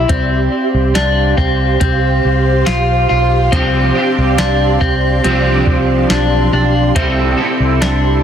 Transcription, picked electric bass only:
0.09 0.47 C2 medium
0.74 0.93 C2 medium
0.95 1.33 C2 medium
1.38 1.76 C2 medium
1.81 2.19 C2 medium
2.25 2.62 C2 medium
2.68 3.05 B1 medium
3.11 3.48 B1 medium
4.18 4.37 C2 medium
4.39 4.76 C2 loud
4.82 5.19 C2 medium
5.25 5.63 C2 medium
5.67 6.05 C2 medium
6.10 6.48 B1 medium
6.53 6.91 B1 medium
6.96 7.33 C2 medium
7.60 7.79 C2 medium

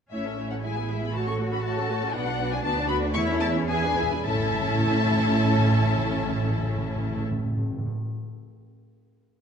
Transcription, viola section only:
0.12 0.24 A3 soft
0.12 0.24 E4 soft
0.25 0.38 C#4 soft
0.37 0.50 A3 soft
0.37 0.50 E4 soft
0.51 0.64 C#4 soft
0.64 0.75 G#3 soft
0.64 0.75 E4 soft
0.76 0.89 B3 soft
0.76 0.89 G#4 soft
0.90 1.02 G#3 soft
0.90 1.02 E4 soft
1.02 1.14 B3 soft
1.02 1.14 G#4 soft
1.15 1.26 A3 soft
1.15 1.26 F#4 soft
1.27 1.40 C#4 soft
1.27 1.40 A4 soft
1.39 1.52 A3 soft
1.39 1.52 F#4 soft
1.51 1.64 C#4 soft
1.51 1.64 A4 soft
1.64 1.76 A3 soft
1.64 1.76 F#4 soft
1.77 1.89 C#4 soft
1.77 1.89 A4 soft
1.89 2.02 A3 soft
1.89 2.02 F#4 soft
2.02 2.14 C#4 soft
2.02 2.15 A4 soft
2.14 2.26 B3 soft
2.14 2.26 F#4 medium
2.27 2.39 D4 medium
2.40 2.52 B3 medium
2.40 2.53 F#4 soft
2.52 2.65 D4 medium
2.64 2.76 B3 medium
2.64 2.76 F#4 medium
2.77 2.90 D4 medium
2.90 3.03 B3 medium
2.90 3.03 F#4 medium
3.03 3.16 D4 medium
3.15 3.28 A3 medium
3.15 3.28 E4 medium
3.28 3.42 C#4 medium
3.41 3.55 A3 medium
3.41 3.55 E4 medium
3.56 3.69 C#4 medium
3.69 3.82 B3 medium
3.69 3.82 E4 medium
3.83 3.97 D4 medium
3.83 3.97 G#4 medium
3.98 4.12 B3 medium
3.98 4.12 E4 medium
4.12 4.26 D4 medium
4.12 4.26 G#4 medium
4.26 7.22 C#4 medium
4.26 7.22 E4 medium

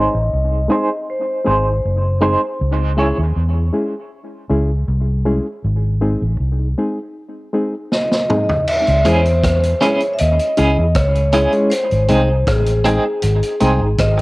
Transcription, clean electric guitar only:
0.00 0.12 D#4 medium
0.00 0.13 G#4 medium
0.00 0.13 C5 medium
0.70 0.89 D#4 medium
0.70 0.89 G#4 medium
0.70 0.89 C5 medium
1.46 1.65 D#4 medium
1.46 1.65 G#4 medium
1.46 1.65 C5 medium
2.22 2.40 D#4 medium
2.22 2.41 G#4 medium
2.22 2.41 C5 medium
2.98 3.16 E4 medium
2.98 3.17 G#4 medium
2.98 3.17 C#5 medium
9.05 9.24 C#4 medium
9.05 9.24 E4 medium
9.05 9.24 G#4 medium
9.81 10.00 C#4 medium
9.81 10.00 E4 medium
9.81 10.00 G#4 medium
10.57 10.76 C#4 medium
10.57 10.76 E4 medium
10.57 10.76 G#4 loud
11.33 11.52 C#4 medium
11.33 11.52 E4 medium
11.33 11.52 G#4 loud
12.09 12.27 C4 medium
12.09 12.28 D#4 medium
12.09 12.28 G#4 medium
12.84 13.03 C4 medium
12.84 13.04 D#4 medium
12.84 13.04 G#4 loud
13.61 13.79 C4 medium
13.61 13.80 D#4 medium
13.61 13.80 G#4 medium
14.18 muted clean electric guitar stroke soft

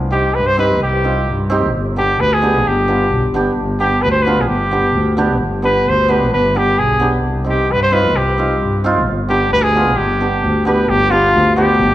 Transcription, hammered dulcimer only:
0.11 0.23 C4 soft
0.11 0.24 D#4 soft
0.11 0.24 G4 medium
0.57 0.69 C4 medium
0.57 0.70 D#4 medium
0.57 0.70 G4 medium
1.04 1.16 C4 medium
1.04 1.16 D#4 soft
1.04 1.17 F4 medium
1.50 1.62 C4 medium
1.50 1.62 D#4 medium
1.50 1.63 G4 medium
1.96 2.08 B3 medium
1.96 2.08 D4 medium
1.96 2.09 G4 medium
2.42 2.54 B3 medium
2.42 2.54 D4 medium
2.42 2.55 G4 medium
2.88 3.00 B3 medium
2.88 3.00 D4 medium
2.88 3.01 F4 medium
3.34 3.46 B3 medium
3.34 3.46 D4 medium
3.34 3.47 G4 medium
3.80 3.92 B3 medium
3.80 3.92 D4 soft
3.80 3.92 G4 medium
4.26 4.38 B3 medium
4.26 4.38 D4 medium
4.26 4.38 F4 medium
4.71 4.83 B3 medium
4.71 4.84 D4 soft
4.71 4.84 G4 medium
5.17 5.29 B3 medium
5.17 5.29 D4 medium
5.17 5.30 G4 medium
5.62 5.75 B3 medium
5.62 5.75 D4 soft
5.62 5.75 G4 medium
6.08 6.20 B3 medium
6.08 6.21 D4 medium
6.08 6.21 G4 medium
6.55 6.66 B3 medium
6.55 6.67 D4 soft
6.55 6.67 G4 soft
7.00 7.12 B3 medium
7.00 7.12 D4 medium
7.00 7.13 G4 medium
7.44 7.57 C4 medium
7.44 7.58 D#4 soft
7.44 7.58 G4 soft
7.91 8.03 C4 medium
7.91 8.04 D#4 medium
7.91 8.04 F4 medium
8.38 8.49 C4 medium
8.38 8.50 D#4 soft
8.38 8.50 F4 medium
8.84 8.95 C4 medium
8.84 8.96 D#4 medium
8.84 8.96 F4 medium
9.29 9.40 B3 medium
9.29 9.41 D4 medium
9.29 9.41 G4 medium
9.75 9.86 B3 medium
9.75 9.87 D4 medium
9.75 9.87 F4 medium
10.21 10.32 B3 medium
10.21 10.32 D4 soft
10.21 10.33 G4 medium
10.65 10.77 B3 medium
10.65 10.78 D4 medium
10.65 10.78 G4 medium
11.11 11.23 B3 medium
11.11 11.23 D4 soft
11.11 11.23 G4 medium
11.56 11.68 B3 medium
11.56 11.68 D4 medium
11.56 11.69 G4 medium

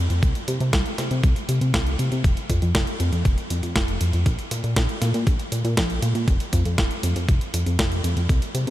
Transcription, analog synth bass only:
0.10 0.21 F2 medium
0.23 0.34 C2 medium
0.48 0.59 C3 loud
0.61 0.72 C3 medium
0.73 0.84 C2 medium
0.98 1.10 C3 loud
1.11 1.22 C3 medium
1.24 1.35 C2 medium
1.49 1.60 C3 medium
1.61 1.73 C3 medium
1.74 1.96 C2 medium
1.99 2.10 C3 medium
2.12 2.23 C3 medium
2.24 2.36 F1 loud
2.50 2.61 F2 loud
2.62 2.73 F2 medium
2.75 2.86 F1 medium
3.00 3.11 F2 loud
3.13 3.24 F2 medium
3.25 3.36 F1 medium
3.50 3.62 F2 medium
3.63 3.74 F2 medium
3.76 3.98 F1 medium
4.01 4.12 F2 medium
4.13 4.25 F2 medium
4.26 4.37 A#1 loud
4.51 4.62 A#2 loud
4.64 4.75 A#2 medium
4.76 4.88 A#1 medium
5.02 5.13 A#2 loud
5.14 5.25 A#2 medium
5.27 5.38 A#1 medium
5.52 5.63 A#2 medium
5.65 5.76 A#2 medium
5.77 6.00 A#1 medium
6.02 6.14 A#2 medium
6.15 6.26 A#2 medium
6.28 6.39 F1 loud
6.53 6.64 F2 loud
6.65 6.77 F2 medium
6.78 6.89 F1 medium
7.03 7.15 F2 loud
7.16 7.27 F2 medium
7.29 7.40 F1 medium
7.54 7.65 F2 medium
7.66 7.78 F2 medium
7.79 8.01 F1 medium
8.04 8.15 F2 medium
8.17 8.28 F2 medium
8.29 8.41 C2 medium
8.55 8.66 C3 loud

